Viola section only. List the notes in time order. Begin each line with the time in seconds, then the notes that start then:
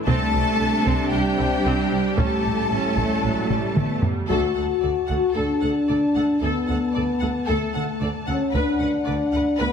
0.07 C4 D4
0.33 G3
0.60 D3
0.85 C4
1.11 G3
1.37 D3
1.65 C4
1.91 G3
2.17 C#4 G4
2.45 A3
2.71 C#4
2.97 A3
3.22 F#3
3.49 G3
3.75 A3
4.02 G3
4.29 A4
4.56 A4
4.83 A4
5.10 A4
5.36 A4
5.64 A4
5.90 A4
6.17 A4
6.44 A4
6.71 A4
6.96 A4
7.22 A4
7.50 A4
7.77 A4
8.03 A4
8.30 A4
8.56 B4
8.82 B4
9.07 B4
9.35 B4
9.60 B4